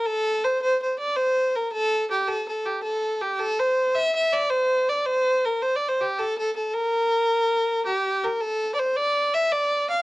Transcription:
fiddle
0.06 A4
0.44 C5
0.62 C5
0.82 C5
0.99 D5
1.16 C5
1.55 A#4
1.72 A4
2.11 G4
2.28 A4
2.48 A4
2.66 G4
2.83 A4
3.21 G4
3.39 A4
3.59 C5
3.95 E5
4.15 E5
4.33 D5
4.50 C5
4.89 D5
5.06 C5
5.45 A#4
5.62 C5
5.76 D5
5.88 C5
6.01 G4
6.19 A4
6.38 A4
6.57 A4
6.74 A#4
7.85 G4
8.24 A#4
8.41 A4
8.75 D5
8.79 C5
8.96 D5
9.34 E5
9.52 D5
9.90 F5

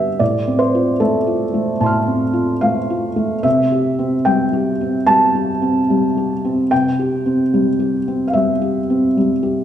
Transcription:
felt piano
Already playing: D3 B3 D4 G4 E5 G5
0.19 A2 D5
0.47 C4
0.59 C5
0.75 F4
1.00 A3 A4
1.27 F4
1.54 A3
1.80 A2 A5 C6
1.86 F6
2.07 C4
2.33 F4
2.61 A3 F5
2.90 F4
3.16 A3
3.43 C3 E5
3.72 G4
3.99 C4
4.25 G3 G5
4.53 G4
4.81 C4
5.07 G3 A5
5.35 G4
5.62 C4
5.90 G3
6.17 G4
6.45 C4
6.71 C3 G5
6.99 G4
7.26 C4
7.54 G3
7.80 G4
8.08 C4
8.28 F5
8.33 G3 E5
8.62 G4
8.90 C4
9.17 G3
9.43 G4

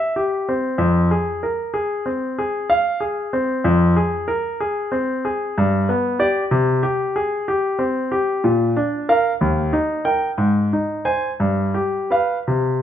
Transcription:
grand piano
Already playing: E5
0.16 G4
0.49 C4
0.78 F2
1.11 G#4
1.43 A#4
1.74 G#4
2.06 C4
2.38 G#4
2.70 F5
3.00 G#4
3.33 C4
3.64 F2
3.96 G#4
4.28 A#4
4.60 G#4
4.92 C4
5.25 G#4
5.58 G2
5.89 B3
6.19 G4 D5
6.51 C3
6.83 G4
7.16 G#4
7.48 G4
7.79 C4
8.12 G4
8.44 A#2
8.77 D4
9.09 A#4 F5
9.41 D#2
9.73 D#4
10.05 A#4 G5
10.38 G#2
10.73 D#4
11.05 C5 G#5
11.40 G2
11.74 G4
12.11 B4 F5
12.48 C3

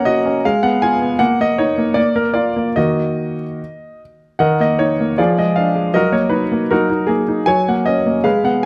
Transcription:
grand piano
Already playing: A#3 C#4 F#5 A#5
0.05 F#4 D#5
0.25 C#4
0.45 G#3 F5
0.63 B3 F#5
0.82 F4 G#5
1.02 B3
1.19 A#3 F#5
1.40 A#3 D#5
1.58 D#4 C#5
1.78 A#3
1.94 A#3 D5
2.16 A#3 A#4
2.34 F4 D5
2.56 A#3
2.76 D#3 A#3 F#4 D#5
4.39 D#3 A#4 D#5 F#5
4.60 A#3 D#5
4.79 D#4 C#5
5.00 A#3
5.18 F3 F4 G#4 D5
5.38 G#3 D#5
5.56 D4 F5
5.75 G#3
5.94 F#3 F#4 A#4 D#5
6.12 A#3 C#5
6.29 D#4 B4
6.52 A#3
6.71 F#3 D#4 F#4 A#4
6.90 D#4
7.07 A#3 G#4
7.28 D#4
7.46 F#3 C#5 G#5
7.68 A#3 F#5
7.86 C#4 D#5
8.06 A#3
8.24 G#3 G#4 B4 F5
8.44 B3 F#5

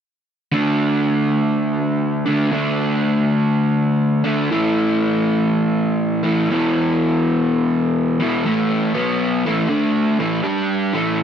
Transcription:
overdriven electric guitar
0.52 D3 A3 D4
2.26 D3 A3 D4
2.51 D3 A3 D4
4.24 D3 A3 D4
4.50 A2 E3 A3
6.23 A2 E3 A3
6.49 E2 B2 E3
8.20 E2 B2 E3
8.46 A2 E3 A3
8.94 B2 F#3 B3
9.45 A2 E3 A3
9.68 D3 A3 D4
10.19 A2 E3 A3
10.43 G3 D4 G4
10.93 A2 E3 A3

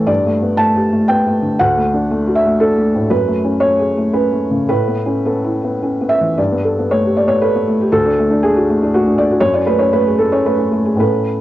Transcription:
felt piano
Already playing: A2 E3 A3 B3 E4 A4 C#5
0.07 G2 D5
0.26 A3
0.42 B3
0.57 A3 A5
0.75 G4
0.92 A3
1.08 B3 G5
1.27 A3
1.42 D3
1.59 D2 F#5
1.77 A3
1.94 D4
2.11 A3
2.27 F#4
2.35 E5
2.46 A3
2.60 D4 A4
2.78 A3
2.94 A2
3.10 F#2 B4
3.27 A3
3.44 C#4
3.60 A3 C#5
3.79 G#4
3.97 A3
4.13 C#4 B4
4.32 A3
4.51 C#3
4.69 A2 B4
4.88 B3
5.06 C#4
5.26 B3 A4
5.44 E4
5.64 B3
5.83 C#4
6.01 B3
6.09 E5
6.21 E3
6.38 G2 D5
6.52 B3
6.64 A4
6.79 B3
6.91 A3 C#5
7.05 G4
7.17 A3 D5
7.28 B3 C#5
7.42 A4 B4
7.55 B3
7.68 A3
7.81 G4
7.92 D2 A4
8.06 D4
8.19 A3
8.31 D4
8.43 A3 G#4
8.56 F#4
8.70 A3
8.83 D4
8.94 A3 F#4
9.07 D4
9.18 A3 D5
9.31 F#4
9.40 F#2 C#5
9.54 C#4 D5
9.66 A3 B4
9.79 C#4 C#5
9.93 A3 B4
10.07 G#4
10.18 A3 A4
10.32 C#4 C#5
10.46 A3 B4
10.58 C#4
10.72 A3
10.85 G#4
10.96 A2 B3 C#4
11.00 A4 B4

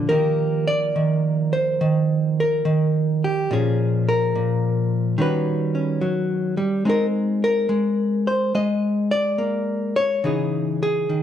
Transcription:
hollow-body jazz guitar
Already playing: F3
0.09 D#3 A#3 G4 A#4
0.67 D5
0.96 D#3
1.53 C5
1.81 D#3
2.40 A#4
2.65 D#3
3.24 G4
3.51 A#2 F3 C#4 G#4
4.09 A#4
4.35 A#2
5.18 D#3 G3 C#4 F#4 B4
5.75 C#4
6.01 F#3
6.57 G3
6.85 G#3 C4 D#4
6.89 A#4
7.44 A#4
7.69 G#3
8.27 C5
8.55 G#3 D#5
9.11 D5
9.38 A#3
9.96 C#5
10.24 C#3 E3 D#4 G#4
10.83 G#4
11.09 D#3

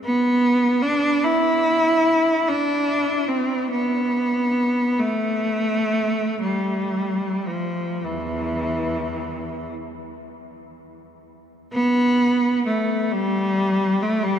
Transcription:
cello
0.05 B3
0.82 D4
1.24 E4
2.48 D4
3.28 C4
3.71 B3
4.99 A3
6.41 G3
7.48 F3
8.04 E2 E3
11.73 B3
12.67 A3
13.12 G3
14.02 A3
14.23 G3

